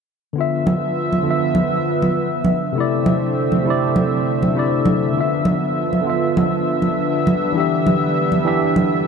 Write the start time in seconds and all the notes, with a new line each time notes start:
0.33 D3 F3 B3 E5
0.38 F4 E5
0.67 high conga
1.13 high conga
1.23 D3 B3
1.28 F4 E5
1.55 high conga
2.02 high conga
2.45 high conga
2.72 C3 A3 C4 E5
2.78 E4 D5
3.06 high conga
3.52 high conga
3.62 C3 A3
3.67 E4 D5
3.96 high conga
4.43 high conga
4.54 C3 A3 E4
4.59 D5
4.86 high conga
5.12 D3 F3 B3
5.18 F4 E5
5.45 high conga
5.93 high conga
6.01 D3 B3
6.07 F4 E5
6.37 high conga
6.82 high conga
7.27 G3, high conga
7.52 E3 D4
7.58 G4 E5
7.87 high conga
8.32 high conga
8.45 E3 D4 G4 E5
8.76 high conga